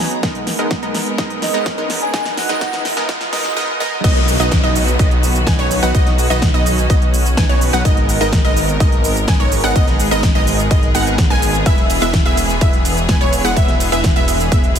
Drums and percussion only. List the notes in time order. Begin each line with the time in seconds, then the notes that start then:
0.11 closed hi-hat
0.23 kick, snare, closed hi-hat
0.35 closed hi-hat
0.47 snare, open hi-hat
0.59 closed hi-hat
0.71 kick, snare, closed hi-hat
0.83 closed hi-hat
0.94 snare, open hi-hat
1.06 closed hi-hat
1.18 kick, snare, closed hi-hat
1.30 closed hi-hat
1.42 snare, open hi-hat
1.54 closed hi-hat
1.66 kick, snare, closed hi-hat
1.78 closed hi-hat
1.90 snare, open hi-hat
2.02 closed hi-hat
2.14 kick, snare, closed hi-hat
2.26 snare, closed hi-hat
2.37 snare, open hi-hat
2.49 snare, closed hi-hat
2.61 kick, snare, closed hi-hat
2.73 snare, closed hi-hat
2.85 snare, open hi-hat
2.97 snare, closed hi-hat
3.09 kick, snare, closed hi-hat
3.21 snare, closed hi-hat
3.33 snare, open hi-hat
3.45 snare, closed hi-hat
4.04 kick, closed hi-hat, crash, cabasa
4.16 closed hi-hat
4.28 open hi-hat, cabasa
4.40 closed hi-hat, cabasa
4.51 kick, snare, closed hi-hat, cabasa
4.64 closed hi-hat
4.75 open hi-hat, cabasa
4.87 closed hi-hat, cabasa
4.99 kick, closed hi-hat, cabasa
5.11 closed hi-hat
5.23 open hi-hat, cabasa
5.35 closed hi-hat, cabasa
5.47 kick, snare, closed hi-hat, cabasa
5.59 closed hi-hat
5.71 open hi-hat, cabasa
5.83 closed hi-hat, cabasa
5.95 kick, closed hi-hat, cabasa
6.06 snare, closed hi-hat
6.18 open hi-hat, cabasa
6.31 cabasa
6.42 kick, snare, closed hi-hat, cabasa
6.54 closed hi-hat
6.66 open hi-hat, cabasa
6.78 closed hi-hat, cabasa
6.90 kick, closed hi-hat, cabasa
7.02 closed hi-hat
7.14 open hi-hat, cabasa
7.26 closed hi-hat, cabasa
7.37 kick, snare, closed hi-hat, cabasa
7.49 closed hi-hat
7.61 open hi-hat, cabasa
7.73 closed hi-hat, cabasa
7.85 kick, closed hi-hat, cabasa
7.97 closed hi-hat
8.09 open hi-hat, cabasa
8.21 closed hi-hat, cabasa
8.33 kick, snare, closed hi-hat, cabasa
8.45 closed hi-hat
8.57 open hi-hat, cabasa
8.68 closed hi-hat, cabasa
8.80 kick, closed hi-hat, cabasa
8.92 closed hi-hat
9.04 open hi-hat, cabasa
9.16 closed hi-hat, cabasa
9.28 kick, snare, closed hi-hat, cabasa
9.40 closed hi-hat
9.52 open hi-hat, cabasa
9.64 closed hi-hat, cabasa
9.76 kick, closed hi-hat, cabasa
9.87 snare, closed hi-hat
9.99 open hi-hat, cabasa
10.11 closed hi-hat, cabasa
10.23 kick, snare, closed hi-hat, cabasa
10.35 closed hi-hat
10.47 open hi-hat, cabasa
10.59 closed hi-hat, cabasa
10.71 kick, closed hi-hat, cabasa
10.83 closed hi-hat
10.95 open hi-hat, cabasa
11.07 closed hi-hat, cabasa
11.18 kick, snare, closed hi-hat, cabasa
11.30 closed hi-hat
11.42 open hi-hat, cabasa
11.54 closed hi-hat, cabasa
11.66 kick, closed hi-hat, ride, cabasa
11.78 closed hi-hat
11.90 open hi-hat, ride, cabasa
12.02 closed hi-hat, cabasa
12.13 kick, snare, closed hi-hat, ride, cabasa
12.25 closed hi-hat
12.37 open hi-hat, ride, cabasa
12.49 closed hi-hat, cabasa
12.61 kick, closed hi-hat, ride, cabasa
12.73 closed hi-hat
12.85 open hi-hat, ride, cabasa
12.97 closed hi-hat, cabasa
13.09 kick, snare, closed hi-hat, ride, cabasa
13.21 closed hi-hat
13.33 open hi-hat, ride, cabasa
13.45 cabasa
13.57 kick, closed hi-hat, ride, cabasa
13.68 snare, closed hi-hat
13.80 open hi-hat, ride, cabasa
13.92 closed hi-hat, cabasa
14.04 kick, snare, closed hi-hat, ride, cabasa
14.16 closed hi-hat
14.28 open hi-hat, ride, cabasa
14.40 closed hi-hat, cabasa
14.52 kick, closed hi-hat, ride, cabasa
14.64 closed hi-hat
14.76 open hi-hat, ride, cabasa